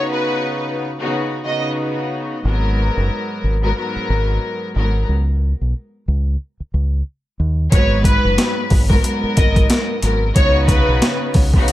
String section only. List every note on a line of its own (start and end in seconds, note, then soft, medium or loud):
0.00 0.87 C#3 loud
0.00 0.87 B3 medium
0.00 0.88 D#4 medium
0.00 0.88 F#4 loud
0.99 1.42 C#3 loud
0.99 1.43 B3 medium
0.99 1.43 D#4 medium
0.99 1.43 F#4 loud
1.44 2.37 C#3 medium
1.44 2.37 B3 medium
1.44 2.38 D#4 medium
1.44 2.38 F#4 medium
2.43 3.51 G#2 loud
2.43 3.52 F#3 medium
2.43 3.52 B3 medium
2.43 3.52 A#4 loud
3.61 3.72 G#2 medium
3.61 3.73 F#3 medium
3.61 3.73 B3 medium
3.61 3.74 A#4 loud
3.73 4.67 G#2 loud
3.73 4.67 F#3 medium
3.73 4.68 B3 medium
3.73 4.68 A#4 loud
4.74 5.05 G#2 medium
4.74 5.06 F#3 medium
4.74 5.06 B3 medium
4.74 5.07 A#4 medium
7.71 8.79 G#2 loud
7.71 8.79 F#3 loud
7.71 8.79 B3 medium
7.71 8.80 B4 loud
8.89 8.99 G#2 loud
8.89 9.00 F#3 medium
8.89 9.01 B3 medium
8.89 9.01 A#4 loud
9.00 9.94 G#2 loud
9.00 9.95 F#3 medium
9.00 9.95 B3 medium
9.00 9.96 A#4 loud
10.01 10.33 G#2 medium
10.01 10.33 F#3 medium
10.01 10.33 B3 medium
10.01 10.34 A#4 loud
10.34 11.42 C#3 loud
10.34 11.42 B3 loud
10.34 11.43 D#4 loud
10.34 11.43 F#4 loud
11.54 11.72 C#3 loud
11.54 11.72 B3 medium
11.54 11.72 D#4 medium
11.54 11.72 F#4 loud